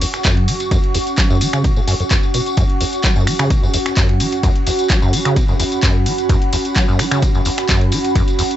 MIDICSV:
0, 0, Header, 1, 4, 480
1, 0, Start_track
1, 0, Tempo, 465116
1, 736, Time_signature, 4, 2, 24, 8
1, 8840, End_track
2, 0, Start_track
2, 0, Title_t, "Ambient pad"
2, 0, Program_c, 0, 92
2, 0, Note_on_c, 0, 61, 73
2, 0, Note_on_c, 0, 66, 77
2, 0, Note_on_c, 0, 78, 77
2, 0, Note_on_c, 0, 85, 75
2, 4112, Note_on_c, 0, 83, 72
2, 4138, Note_off_c, 0, 85, 0
2, 8840, Note_off_c, 0, 61, 0
2, 8840, Note_off_c, 0, 66, 0
2, 8840, Note_off_c, 0, 78, 0
2, 8840, Note_off_c, 0, 83, 0
2, 8840, End_track
3, 0, Start_track
3, 0, Title_t, "Acid bass"
3, 0, Program_c, 1, 38
3, 16, Note_on_c, 1, 40, 77
3, 58, Note_off_c, 1, 40, 0
3, 256, Note_on_c, 1, 42, 103
3, 496, Note_on_c, 1, 54, 71
3, 512, Note_off_c, 1, 42, 0
3, 566, Note_off_c, 1, 54, 0
3, 736, Note_on_c, 1, 42, 98
3, 806, Note_off_c, 1, 42, 0
3, 976, Note_on_c, 1, 40, 77
3, 1018, Note_off_c, 1, 40, 0
3, 1216, Note_on_c, 1, 54, 80
3, 1321, Note_off_c, 1, 54, 0
3, 1342, Note_on_c, 1, 42, 96
3, 1456, Note_on_c, 1, 54, 75
3, 1471, Note_off_c, 1, 42, 0
3, 1525, Note_off_c, 1, 54, 0
3, 1583, Note_on_c, 1, 49, 98
3, 1696, Note_on_c, 1, 47, 84
3, 1712, Note_off_c, 1, 49, 0
3, 1766, Note_off_c, 1, 47, 0
3, 1822, Note_on_c, 1, 45, 74
3, 1860, Note_off_c, 1, 45, 0
3, 1936, Note_on_c, 1, 42, 106
3, 2005, Note_off_c, 1, 42, 0
3, 2062, Note_on_c, 1, 42, 74
3, 2100, Note_off_c, 1, 42, 0
3, 2176, Note_on_c, 1, 42, 87
3, 2245, Note_off_c, 1, 42, 0
3, 2416, Note_on_c, 1, 47, 72
3, 2486, Note_off_c, 1, 47, 0
3, 2656, Note_on_c, 1, 42, 101
3, 2726, Note_off_c, 1, 42, 0
3, 2896, Note_on_c, 1, 40, 77
3, 2938, Note_off_c, 1, 40, 0
3, 3135, Note_on_c, 1, 54, 78
3, 3240, Note_off_c, 1, 54, 0
3, 3262, Note_on_c, 1, 42, 95
3, 3375, Note_on_c, 1, 54, 74
3, 3391, Note_off_c, 1, 42, 0
3, 3445, Note_off_c, 1, 54, 0
3, 3502, Note_on_c, 1, 49, 95
3, 3616, Note_on_c, 1, 47, 81
3, 3631, Note_off_c, 1, 49, 0
3, 3685, Note_off_c, 1, 47, 0
3, 3742, Note_on_c, 1, 42, 74
3, 3805, Note_off_c, 1, 42, 0
3, 3856, Note_on_c, 1, 40, 82
3, 3898, Note_off_c, 1, 40, 0
3, 4096, Note_on_c, 1, 42, 104
3, 4336, Note_on_c, 1, 54, 80
3, 4351, Note_off_c, 1, 42, 0
3, 4406, Note_off_c, 1, 54, 0
3, 4576, Note_on_c, 1, 42, 98
3, 4646, Note_off_c, 1, 42, 0
3, 4816, Note_on_c, 1, 40, 76
3, 4858, Note_off_c, 1, 40, 0
3, 5056, Note_on_c, 1, 54, 82
3, 5160, Note_off_c, 1, 54, 0
3, 5183, Note_on_c, 1, 42, 95
3, 5295, Note_on_c, 1, 54, 73
3, 5311, Note_off_c, 1, 42, 0
3, 5365, Note_off_c, 1, 54, 0
3, 5423, Note_on_c, 1, 49, 94
3, 5536, Note_on_c, 1, 47, 85
3, 5551, Note_off_c, 1, 49, 0
3, 5606, Note_off_c, 1, 47, 0
3, 5662, Note_on_c, 1, 42, 75
3, 5725, Note_off_c, 1, 42, 0
3, 5775, Note_on_c, 1, 40, 76
3, 5817, Note_off_c, 1, 40, 0
3, 6015, Note_on_c, 1, 42, 107
3, 6256, Note_on_c, 1, 54, 73
3, 6271, Note_off_c, 1, 42, 0
3, 6326, Note_off_c, 1, 54, 0
3, 6495, Note_on_c, 1, 42, 104
3, 6565, Note_off_c, 1, 42, 0
3, 6736, Note_on_c, 1, 40, 76
3, 6778, Note_off_c, 1, 40, 0
3, 6976, Note_on_c, 1, 54, 88
3, 7080, Note_off_c, 1, 54, 0
3, 7102, Note_on_c, 1, 42, 101
3, 7216, Note_on_c, 1, 54, 77
3, 7231, Note_off_c, 1, 42, 0
3, 7286, Note_off_c, 1, 54, 0
3, 7342, Note_on_c, 1, 49, 97
3, 7455, Note_on_c, 1, 47, 85
3, 7471, Note_off_c, 1, 49, 0
3, 7525, Note_off_c, 1, 47, 0
3, 7582, Note_on_c, 1, 42, 75
3, 7645, Note_off_c, 1, 42, 0
3, 7696, Note_on_c, 1, 40, 77
3, 7738, Note_off_c, 1, 40, 0
3, 7935, Note_on_c, 1, 42, 104
3, 8175, Note_on_c, 1, 54, 75
3, 8191, Note_off_c, 1, 42, 0
3, 8245, Note_off_c, 1, 54, 0
3, 8416, Note_on_c, 1, 42, 103
3, 8486, Note_off_c, 1, 42, 0
3, 8656, Note_on_c, 1, 40, 76
3, 8698, Note_off_c, 1, 40, 0
3, 8840, End_track
4, 0, Start_track
4, 0, Title_t, "Drums"
4, 15, Note_on_c, 9, 46, 108
4, 15, Note_on_c, 9, 51, 70
4, 21, Note_on_c, 9, 54, 86
4, 118, Note_off_c, 9, 51, 0
4, 119, Note_off_c, 9, 46, 0
4, 124, Note_off_c, 9, 54, 0
4, 143, Note_on_c, 9, 26, 58
4, 143, Note_on_c, 9, 38, 35
4, 143, Note_on_c, 9, 42, 46
4, 147, Note_on_c, 9, 54, 39
4, 246, Note_off_c, 9, 26, 0
4, 246, Note_off_c, 9, 38, 0
4, 246, Note_off_c, 9, 42, 0
4, 250, Note_off_c, 9, 54, 0
4, 250, Note_on_c, 9, 54, 50
4, 255, Note_on_c, 9, 38, 115
4, 255, Note_on_c, 9, 42, 57
4, 255, Note_on_c, 9, 51, 89
4, 256, Note_on_c, 9, 36, 122
4, 259, Note_on_c, 9, 39, 116
4, 354, Note_off_c, 9, 54, 0
4, 359, Note_off_c, 9, 36, 0
4, 359, Note_off_c, 9, 38, 0
4, 359, Note_off_c, 9, 42, 0
4, 359, Note_off_c, 9, 51, 0
4, 362, Note_off_c, 9, 39, 0
4, 382, Note_on_c, 9, 51, 44
4, 486, Note_off_c, 9, 51, 0
4, 494, Note_on_c, 9, 54, 83
4, 495, Note_on_c, 9, 51, 64
4, 496, Note_on_c, 9, 46, 103
4, 597, Note_off_c, 9, 54, 0
4, 599, Note_off_c, 9, 46, 0
4, 599, Note_off_c, 9, 51, 0
4, 617, Note_on_c, 9, 54, 41
4, 622, Note_on_c, 9, 42, 46
4, 622, Note_on_c, 9, 51, 42
4, 720, Note_off_c, 9, 54, 0
4, 725, Note_off_c, 9, 42, 0
4, 725, Note_off_c, 9, 51, 0
4, 735, Note_on_c, 9, 42, 59
4, 736, Note_on_c, 9, 36, 117
4, 736, Note_on_c, 9, 51, 90
4, 738, Note_on_c, 9, 54, 53
4, 839, Note_off_c, 9, 36, 0
4, 839, Note_off_c, 9, 42, 0
4, 839, Note_off_c, 9, 51, 0
4, 841, Note_off_c, 9, 54, 0
4, 863, Note_on_c, 9, 42, 34
4, 966, Note_off_c, 9, 42, 0
4, 973, Note_on_c, 9, 54, 95
4, 975, Note_on_c, 9, 51, 66
4, 976, Note_on_c, 9, 46, 100
4, 1076, Note_off_c, 9, 54, 0
4, 1079, Note_off_c, 9, 46, 0
4, 1079, Note_off_c, 9, 51, 0
4, 1103, Note_on_c, 9, 42, 49
4, 1111, Note_on_c, 9, 54, 37
4, 1206, Note_off_c, 9, 42, 0
4, 1214, Note_off_c, 9, 54, 0
4, 1215, Note_on_c, 9, 38, 112
4, 1215, Note_on_c, 9, 51, 83
4, 1216, Note_on_c, 9, 36, 117
4, 1216, Note_on_c, 9, 42, 59
4, 1220, Note_on_c, 9, 39, 110
4, 1221, Note_on_c, 9, 54, 53
4, 1319, Note_off_c, 9, 36, 0
4, 1319, Note_off_c, 9, 38, 0
4, 1319, Note_off_c, 9, 42, 0
4, 1319, Note_off_c, 9, 51, 0
4, 1323, Note_off_c, 9, 39, 0
4, 1324, Note_off_c, 9, 54, 0
4, 1345, Note_on_c, 9, 54, 38
4, 1448, Note_off_c, 9, 54, 0
4, 1455, Note_on_c, 9, 46, 106
4, 1456, Note_on_c, 9, 51, 63
4, 1460, Note_on_c, 9, 54, 94
4, 1559, Note_off_c, 9, 46, 0
4, 1559, Note_off_c, 9, 51, 0
4, 1563, Note_off_c, 9, 54, 0
4, 1578, Note_on_c, 9, 54, 44
4, 1582, Note_on_c, 9, 26, 79
4, 1582, Note_on_c, 9, 42, 47
4, 1681, Note_off_c, 9, 54, 0
4, 1685, Note_off_c, 9, 26, 0
4, 1685, Note_off_c, 9, 42, 0
4, 1696, Note_on_c, 9, 36, 119
4, 1696, Note_on_c, 9, 42, 62
4, 1696, Note_on_c, 9, 51, 85
4, 1699, Note_on_c, 9, 54, 47
4, 1799, Note_off_c, 9, 36, 0
4, 1799, Note_off_c, 9, 42, 0
4, 1799, Note_off_c, 9, 51, 0
4, 1802, Note_off_c, 9, 54, 0
4, 1820, Note_on_c, 9, 54, 35
4, 1923, Note_off_c, 9, 54, 0
4, 1935, Note_on_c, 9, 46, 105
4, 1936, Note_on_c, 9, 51, 66
4, 1943, Note_on_c, 9, 54, 82
4, 2039, Note_off_c, 9, 46, 0
4, 2039, Note_off_c, 9, 51, 0
4, 2047, Note_off_c, 9, 54, 0
4, 2062, Note_on_c, 9, 42, 46
4, 2070, Note_on_c, 9, 54, 36
4, 2165, Note_off_c, 9, 42, 0
4, 2173, Note_off_c, 9, 54, 0
4, 2175, Note_on_c, 9, 38, 120
4, 2175, Note_on_c, 9, 42, 61
4, 2175, Note_on_c, 9, 51, 88
4, 2176, Note_on_c, 9, 36, 122
4, 2178, Note_on_c, 9, 54, 47
4, 2179, Note_on_c, 9, 39, 103
4, 2279, Note_off_c, 9, 36, 0
4, 2279, Note_off_c, 9, 38, 0
4, 2279, Note_off_c, 9, 42, 0
4, 2279, Note_off_c, 9, 51, 0
4, 2282, Note_off_c, 9, 39, 0
4, 2282, Note_off_c, 9, 54, 0
4, 2302, Note_on_c, 9, 54, 34
4, 2405, Note_off_c, 9, 54, 0
4, 2415, Note_on_c, 9, 46, 100
4, 2416, Note_on_c, 9, 51, 65
4, 2419, Note_on_c, 9, 54, 90
4, 2519, Note_off_c, 9, 46, 0
4, 2519, Note_off_c, 9, 51, 0
4, 2522, Note_off_c, 9, 54, 0
4, 2543, Note_on_c, 9, 42, 48
4, 2550, Note_on_c, 9, 54, 38
4, 2646, Note_off_c, 9, 42, 0
4, 2650, Note_off_c, 9, 54, 0
4, 2650, Note_on_c, 9, 54, 55
4, 2655, Note_on_c, 9, 42, 62
4, 2656, Note_on_c, 9, 36, 117
4, 2656, Note_on_c, 9, 51, 87
4, 2754, Note_off_c, 9, 54, 0
4, 2759, Note_off_c, 9, 36, 0
4, 2759, Note_off_c, 9, 42, 0
4, 2759, Note_off_c, 9, 51, 0
4, 2782, Note_on_c, 9, 42, 34
4, 2885, Note_off_c, 9, 42, 0
4, 2895, Note_on_c, 9, 46, 99
4, 2895, Note_on_c, 9, 51, 64
4, 2899, Note_on_c, 9, 54, 91
4, 2999, Note_off_c, 9, 46, 0
4, 2999, Note_off_c, 9, 51, 0
4, 3002, Note_off_c, 9, 54, 0
4, 3018, Note_on_c, 9, 54, 35
4, 3022, Note_on_c, 9, 42, 48
4, 3121, Note_off_c, 9, 54, 0
4, 3125, Note_off_c, 9, 42, 0
4, 3135, Note_on_c, 9, 38, 109
4, 3135, Note_on_c, 9, 51, 83
4, 3136, Note_on_c, 9, 36, 118
4, 3136, Note_on_c, 9, 42, 57
4, 3137, Note_on_c, 9, 54, 46
4, 3139, Note_on_c, 9, 39, 108
4, 3239, Note_off_c, 9, 36, 0
4, 3239, Note_off_c, 9, 38, 0
4, 3239, Note_off_c, 9, 42, 0
4, 3239, Note_off_c, 9, 51, 0
4, 3240, Note_off_c, 9, 54, 0
4, 3243, Note_off_c, 9, 39, 0
4, 3258, Note_on_c, 9, 54, 39
4, 3361, Note_off_c, 9, 54, 0
4, 3376, Note_on_c, 9, 26, 67
4, 3376, Note_on_c, 9, 46, 103
4, 3377, Note_on_c, 9, 54, 89
4, 3479, Note_off_c, 9, 26, 0
4, 3479, Note_off_c, 9, 46, 0
4, 3481, Note_off_c, 9, 54, 0
4, 3497, Note_on_c, 9, 54, 36
4, 3502, Note_on_c, 9, 26, 84
4, 3502, Note_on_c, 9, 42, 47
4, 3502, Note_on_c, 9, 51, 43
4, 3600, Note_off_c, 9, 54, 0
4, 3606, Note_off_c, 9, 26, 0
4, 3606, Note_off_c, 9, 42, 0
4, 3606, Note_off_c, 9, 51, 0
4, 3615, Note_on_c, 9, 42, 60
4, 3616, Note_on_c, 9, 36, 120
4, 3616, Note_on_c, 9, 51, 83
4, 3619, Note_on_c, 9, 54, 50
4, 3719, Note_off_c, 9, 36, 0
4, 3719, Note_off_c, 9, 42, 0
4, 3719, Note_off_c, 9, 51, 0
4, 3722, Note_off_c, 9, 54, 0
4, 3750, Note_on_c, 9, 54, 35
4, 3854, Note_off_c, 9, 54, 0
4, 3856, Note_on_c, 9, 46, 100
4, 3856, Note_on_c, 9, 51, 68
4, 3858, Note_on_c, 9, 54, 83
4, 3959, Note_off_c, 9, 46, 0
4, 3959, Note_off_c, 9, 51, 0
4, 3961, Note_off_c, 9, 54, 0
4, 3982, Note_on_c, 9, 26, 59
4, 3982, Note_on_c, 9, 42, 48
4, 3983, Note_on_c, 9, 38, 37
4, 3984, Note_on_c, 9, 54, 35
4, 4085, Note_off_c, 9, 26, 0
4, 4085, Note_off_c, 9, 42, 0
4, 4086, Note_off_c, 9, 38, 0
4, 4087, Note_off_c, 9, 54, 0
4, 4093, Note_on_c, 9, 54, 47
4, 4095, Note_on_c, 9, 42, 60
4, 4096, Note_on_c, 9, 36, 120
4, 4096, Note_on_c, 9, 38, 116
4, 4096, Note_on_c, 9, 51, 90
4, 4099, Note_on_c, 9, 39, 99
4, 4196, Note_off_c, 9, 54, 0
4, 4199, Note_off_c, 9, 36, 0
4, 4199, Note_off_c, 9, 38, 0
4, 4199, Note_off_c, 9, 42, 0
4, 4199, Note_off_c, 9, 51, 0
4, 4203, Note_off_c, 9, 39, 0
4, 4222, Note_on_c, 9, 51, 43
4, 4326, Note_off_c, 9, 51, 0
4, 4335, Note_on_c, 9, 46, 97
4, 4336, Note_on_c, 9, 51, 64
4, 4338, Note_on_c, 9, 54, 98
4, 4438, Note_off_c, 9, 46, 0
4, 4439, Note_off_c, 9, 51, 0
4, 4441, Note_off_c, 9, 54, 0
4, 4459, Note_on_c, 9, 54, 39
4, 4462, Note_on_c, 9, 42, 48
4, 4463, Note_on_c, 9, 51, 41
4, 4563, Note_off_c, 9, 54, 0
4, 4565, Note_off_c, 9, 42, 0
4, 4566, Note_off_c, 9, 51, 0
4, 4575, Note_on_c, 9, 42, 64
4, 4575, Note_on_c, 9, 51, 86
4, 4576, Note_on_c, 9, 36, 104
4, 4581, Note_on_c, 9, 54, 48
4, 4678, Note_off_c, 9, 42, 0
4, 4679, Note_off_c, 9, 36, 0
4, 4679, Note_off_c, 9, 51, 0
4, 4684, Note_off_c, 9, 54, 0
4, 4702, Note_on_c, 9, 42, 35
4, 4805, Note_off_c, 9, 42, 0
4, 4815, Note_on_c, 9, 46, 92
4, 4816, Note_on_c, 9, 51, 68
4, 4820, Note_on_c, 9, 54, 90
4, 4918, Note_off_c, 9, 46, 0
4, 4919, Note_off_c, 9, 51, 0
4, 4923, Note_off_c, 9, 54, 0
4, 4942, Note_on_c, 9, 42, 50
4, 4943, Note_on_c, 9, 54, 39
4, 5045, Note_off_c, 9, 42, 0
4, 5047, Note_off_c, 9, 54, 0
4, 5053, Note_on_c, 9, 54, 52
4, 5055, Note_on_c, 9, 38, 110
4, 5055, Note_on_c, 9, 42, 61
4, 5055, Note_on_c, 9, 51, 88
4, 5056, Note_on_c, 9, 36, 112
4, 5059, Note_on_c, 9, 39, 108
4, 5156, Note_off_c, 9, 54, 0
4, 5158, Note_off_c, 9, 42, 0
4, 5159, Note_off_c, 9, 36, 0
4, 5159, Note_off_c, 9, 38, 0
4, 5159, Note_off_c, 9, 51, 0
4, 5162, Note_off_c, 9, 39, 0
4, 5184, Note_on_c, 9, 54, 35
4, 5287, Note_off_c, 9, 54, 0
4, 5295, Note_on_c, 9, 46, 102
4, 5295, Note_on_c, 9, 51, 68
4, 5300, Note_on_c, 9, 54, 83
4, 5398, Note_off_c, 9, 46, 0
4, 5398, Note_off_c, 9, 51, 0
4, 5403, Note_off_c, 9, 54, 0
4, 5422, Note_on_c, 9, 26, 80
4, 5422, Note_on_c, 9, 42, 51
4, 5422, Note_on_c, 9, 54, 35
4, 5525, Note_off_c, 9, 26, 0
4, 5525, Note_off_c, 9, 42, 0
4, 5525, Note_off_c, 9, 54, 0
4, 5535, Note_on_c, 9, 42, 63
4, 5535, Note_on_c, 9, 51, 90
4, 5535, Note_on_c, 9, 54, 41
4, 5536, Note_on_c, 9, 36, 112
4, 5638, Note_off_c, 9, 42, 0
4, 5639, Note_off_c, 9, 36, 0
4, 5639, Note_off_c, 9, 51, 0
4, 5639, Note_off_c, 9, 54, 0
4, 5659, Note_on_c, 9, 54, 31
4, 5762, Note_off_c, 9, 54, 0
4, 5775, Note_on_c, 9, 46, 99
4, 5775, Note_on_c, 9, 51, 67
4, 5775, Note_on_c, 9, 54, 82
4, 5878, Note_off_c, 9, 46, 0
4, 5878, Note_off_c, 9, 54, 0
4, 5879, Note_off_c, 9, 51, 0
4, 5901, Note_on_c, 9, 54, 41
4, 5902, Note_on_c, 9, 42, 48
4, 6004, Note_off_c, 9, 54, 0
4, 6005, Note_off_c, 9, 42, 0
4, 6012, Note_on_c, 9, 54, 47
4, 6015, Note_on_c, 9, 42, 59
4, 6016, Note_on_c, 9, 36, 116
4, 6016, Note_on_c, 9, 38, 114
4, 6016, Note_on_c, 9, 51, 89
4, 6019, Note_on_c, 9, 39, 107
4, 6115, Note_off_c, 9, 54, 0
4, 6118, Note_off_c, 9, 42, 0
4, 6119, Note_off_c, 9, 36, 0
4, 6119, Note_off_c, 9, 38, 0
4, 6119, Note_off_c, 9, 51, 0
4, 6122, Note_off_c, 9, 39, 0
4, 6253, Note_on_c, 9, 54, 87
4, 6255, Note_on_c, 9, 46, 95
4, 6255, Note_on_c, 9, 51, 65
4, 6356, Note_off_c, 9, 54, 0
4, 6358, Note_off_c, 9, 46, 0
4, 6359, Note_off_c, 9, 51, 0
4, 6380, Note_on_c, 9, 54, 33
4, 6382, Note_on_c, 9, 42, 49
4, 6483, Note_off_c, 9, 54, 0
4, 6485, Note_off_c, 9, 42, 0
4, 6494, Note_on_c, 9, 54, 41
4, 6495, Note_on_c, 9, 42, 64
4, 6496, Note_on_c, 9, 36, 106
4, 6496, Note_on_c, 9, 51, 88
4, 6597, Note_off_c, 9, 54, 0
4, 6598, Note_off_c, 9, 42, 0
4, 6599, Note_off_c, 9, 36, 0
4, 6599, Note_off_c, 9, 51, 0
4, 6622, Note_on_c, 9, 42, 36
4, 6726, Note_off_c, 9, 42, 0
4, 6735, Note_on_c, 9, 54, 86
4, 6736, Note_on_c, 9, 46, 98
4, 6736, Note_on_c, 9, 51, 68
4, 6838, Note_off_c, 9, 54, 0
4, 6839, Note_off_c, 9, 46, 0
4, 6839, Note_off_c, 9, 51, 0
4, 6863, Note_on_c, 9, 42, 53
4, 6865, Note_on_c, 9, 54, 40
4, 6966, Note_off_c, 9, 42, 0
4, 6968, Note_off_c, 9, 54, 0
4, 6976, Note_on_c, 9, 36, 112
4, 6976, Note_on_c, 9, 38, 114
4, 6976, Note_on_c, 9, 42, 62
4, 6976, Note_on_c, 9, 51, 84
4, 6977, Note_on_c, 9, 54, 46
4, 6980, Note_on_c, 9, 39, 108
4, 7079, Note_off_c, 9, 36, 0
4, 7079, Note_off_c, 9, 38, 0
4, 7079, Note_off_c, 9, 42, 0
4, 7079, Note_off_c, 9, 51, 0
4, 7080, Note_off_c, 9, 54, 0
4, 7083, Note_off_c, 9, 39, 0
4, 7106, Note_on_c, 9, 54, 33
4, 7209, Note_off_c, 9, 54, 0
4, 7216, Note_on_c, 9, 26, 67
4, 7216, Note_on_c, 9, 46, 96
4, 7216, Note_on_c, 9, 54, 81
4, 7319, Note_off_c, 9, 26, 0
4, 7319, Note_off_c, 9, 46, 0
4, 7320, Note_off_c, 9, 54, 0
4, 7340, Note_on_c, 9, 54, 40
4, 7342, Note_on_c, 9, 26, 77
4, 7342, Note_on_c, 9, 42, 52
4, 7343, Note_on_c, 9, 51, 43
4, 7444, Note_off_c, 9, 54, 0
4, 7446, Note_off_c, 9, 26, 0
4, 7446, Note_off_c, 9, 42, 0
4, 7446, Note_off_c, 9, 51, 0
4, 7453, Note_on_c, 9, 54, 48
4, 7455, Note_on_c, 9, 36, 112
4, 7456, Note_on_c, 9, 42, 67
4, 7456, Note_on_c, 9, 51, 87
4, 7556, Note_off_c, 9, 54, 0
4, 7559, Note_off_c, 9, 36, 0
4, 7559, Note_off_c, 9, 42, 0
4, 7559, Note_off_c, 9, 51, 0
4, 7582, Note_on_c, 9, 54, 34
4, 7686, Note_off_c, 9, 54, 0
4, 7689, Note_on_c, 9, 54, 82
4, 7696, Note_on_c, 9, 46, 97
4, 7696, Note_on_c, 9, 51, 68
4, 7792, Note_off_c, 9, 54, 0
4, 7799, Note_off_c, 9, 46, 0
4, 7799, Note_off_c, 9, 51, 0
4, 7817, Note_on_c, 9, 54, 34
4, 7822, Note_on_c, 9, 26, 59
4, 7822, Note_on_c, 9, 38, 36
4, 7822, Note_on_c, 9, 42, 51
4, 7920, Note_off_c, 9, 54, 0
4, 7926, Note_off_c, 9, 26, 0
4, 7926, Note_off_c, 9, 38, 0
4, 7926, Note_off_c, 9, 42, 0
4, 7935, Note_on_c, 9, 54, 46
4, 7936, Note_on_c, 9, 36, 112
4, 7936, Note_on_c, 9, 38, 119
4, 7936, Note_on_c, 9, 42, 65
4, 7936, Note_on_c, 9, 51, 90
4, 7939, Note_on_c, 9, 39, 107
4, 8038, Note_off_c, 9, 54, 0
4, 8039, Note_off_c, 9, 36, 0
4, 8039, Note_off_c, 9, 38, 0
4, 8039, Note_off_c, 9, 42, 0
4, 8039, Note_off_c, 9, 51, 0
4, 8043, Note_off_c, 9, 39, 0
4, 8063, Note_on_c, 9, 51, 46
4, 8166, Note_off_c, 9, 51, 0
4, 8170, Note_on_c, 9, 54, 88
4, 8175, Note_on_c, 9, 51, 68
4, 8176, Note_on_c, 9, 46, 89
4, 8274, Note_off_c, 9, 54, 0
4, 8279, Note_off_c, 9, 46, 0
4, 8279, Note_off_c, 9, 51, 0
4, 8302, Note_on_c, 9, 51, 42
4, 8303, Note_on_c, 9, 42, 54
4, 8305, Note_on_c, 9, 54, 34
4, 8406, Note_off_c, 9, 42, 0
4, 8406, Note_off_c, 9, 51, 0
4, 8408, Note_off_c, 9, 54, 0
4, 8415, Note_on_c, 9, 51, 87
4, 8416, Note_on_c, 9, 36, 111
4, 8416, Note_on_c, 9, 42, 67
4, 8423, Note_on_c, 9, 54, 51
4, 8519, Note_off_c, 9, 36, 0
4, 8519, Note_off_c, 9, 42, 0
4, 8519, Note_off_c, 9, 51, 0
4, 8526, Note_off_c, 9, 54, 0
4, 8541, Note_on_c, 9, 54, 38
4, 8543, Note_on_c, 9, 42, 36
4, 8644, Note_off_c, 9, 54, 0
4, 8646, Note_off_c, 9, 42, 0
4, 8656, Note_on_c, 9, 46, 97
4, 8656, Note_on_c, 9, 51, 64
4, 8656, Note_on_c, 9, 54, 84
4, 8759, Note_off_c, 9, 46, 0
4, 8759, Note_off_c, 9, 51, 0
4, 8759, Note_off_c, 9, 54, 0
4, 8778, Note_on_c, 9, 54, 36
4, 8782, Note_on_c, 9, 42, 53
4, 8840, Note_off_c, 9, 42, 0
4, 8840, Note_off_c, 9, 54, 0
4, 8840, End_track
0, 0, End_of_file